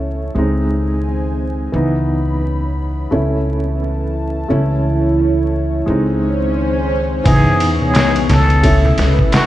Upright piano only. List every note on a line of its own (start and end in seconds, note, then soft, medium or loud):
0.00 0.32 A3 medium
0.00 0.33 C#4 medium
0.00 0.33 E4 medium
0.35 1.70 G#3 medium
0.35 1.71 C4 medium
0.35 1.72 D#4 medium
1.72 3.08 E3 medium
1.72 3.09 B3 medium
1.72 3.09 D#4 medium
3.11 4.46 A3 medium
3.11 4.47 C#4 medium
3.11 4.48 E4 medium
4.48 5.84 A3 medium
4.48 5.84 C#4 medium
4.48 5.85 E4 medium
5.86 7.21 G#3 medium
5.86 7.22 C4 medium
5.86 7.23 D#4 medium
7.24 8.57 E3 medium
7.24 8.58 B3 medium
7.24 8.59 D#4 medium
8.63 9.46 A3 medium
8.63 9.46 C#4 medium
8.63 9.46 E4 medium